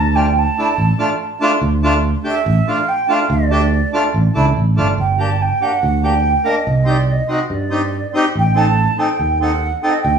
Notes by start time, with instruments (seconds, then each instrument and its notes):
Already playing: fingered electric bass D2, flute A5
0.14 accordion A3 D4 F4, flute G5
0.38 flute A5
0.58 accordion A3 D4 E4
0.78 fingered electric bass A1
0.98 accordion A3 D4 F4
1.40 accordion A3 D4 F4
1.61 fingered electric bass D2
1.83 accordion A3 D4 F4
2.24 accordion A3 D4 G4
2.29 flute E5
2.46 fingered electric bass A1
2.67 accordion A3 D4 F4, flute F5
2.88 flute G5
3.08 accordion A3 D4 F4, flute F5
3.30 fingered electric bass D2, flute D5
3.50 accordion A3 D4 G4
3.93 accordion A3 D4 F4
4.14 fingered electric bass A1
4.34 fingered electric bass C#2, accordion A3 D4 E4
4.57 fingered electric bass A1
4.76 fingered electric bass G1, accordion A3 D4 F4
4.98 fingered electric bass G1, flute G5
5.18 accordion A#3 D4 G4, flute A5
5.42 flute G5
5.61 accordion A#3 D4 G4, flute F#5
5.83 fingered electric bass D2
6.03 accordion A#3 D4 G4, flute G5
6.43 accordion A#3 D4 A#4, flute D#5
6.67 fingered electric bass C2
6.85 accordion C4 D#4 G4
6.89 flute D5
7.12 flute D#5
7.28 accordion C4 D#4 F#4, flute D#5
7.46 fingered electric bass G2, flute D#5
7.54 flute D5
7.70 accordion C4 D#4 G4
8.13 accordion C4 D#4 G4
8.35 fingered electric bass A1, flute G5
8.55 accordion C4 D#4 A4, flute A5
8.98 accordion C4 D#4 A4, flute G5
9.19 fingered electric bass D#2
9.41 accordion C4 D#4 A4, flute F#5
9.82 accordion C4 D#4 A4, flute G5
9.91 flute D#5
10.02 fingered electric bass D2, flute G5